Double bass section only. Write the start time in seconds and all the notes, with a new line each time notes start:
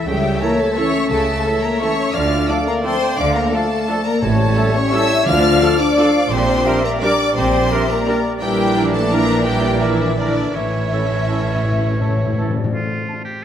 0.07 C#2
1.10 C#2
2.15 D2
3.18 D2
4.22 A1
5.27 D2
6.31 A#1
7.36 A#1
8.41 A#1
10.54 A1